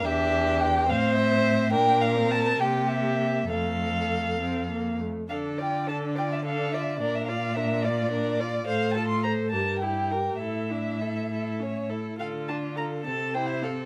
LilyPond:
<<
  \new Staff \with { instrumentName = "Violin" } { \time 6/8 \key f \major \tempo 4. = 70 e''4 g''8 f''8 e''4 | g''8 f''8 a''8 g''8 e''4 | f''2~ f''8 r8 | \key d \minor f''8 g''8 a''8 g''16 e''16 f''8 e''8 |
d''16 e''16 f''8 e''8 d''4. | f''8 a''16 c'''16 bes''8 a''8 g''4 | e''2~ e''8 r8 | f''8 a''8 bes''8 a''8 g''16 e''16 f''8 | }
  \new Staff \with { instrumentName = "Violin" } { \time 6/8 \key f \major g'4. c''4. | bes'4. g'4. | a'2~ a'16 r8. | \key d \minor a'8 d''8 a'8 d''8 a'8 d''8 |
bes'8 d''8 bes'8 d''8 bes'8 d''8 | c''8 a'8 c''8 bes'8 g'8 bes'8 | a'8 e'8 a'8 a'8 cis''8 a'8 | a'8 f'8 a'8 a'8 c''8 a'8 | }
  \new Staff \with { instrumentName = "Viola" } { \time 6/8 \key f \major d'4. c'4. | d'8. c'8. bes4. | a4. c'8 bes8 a8 | \key d \minor d'8 f'8 d'8 f'8 d'8 f'8 |
d'8 f'8 d'8 f'8 d'8 f'8 | a'8 f'8 a'8 g'8 e'8 g'8 | e'8 d'8 e'8 e'8 cis'8 e'8 | f'8 d'8 f'8 c'8 e'8 c'8 | }
  \new Staff \with { instrumentName = "Cello" } { \clef bass \time 6/8 \key f \major e,4. a,4. | bes,4. c4. | f,2~ f,8 r8 | \key d \minor d2. |
bes,2. | a,4. g,4. | a,2~ a,8 r8 | d4. c4. | }
>>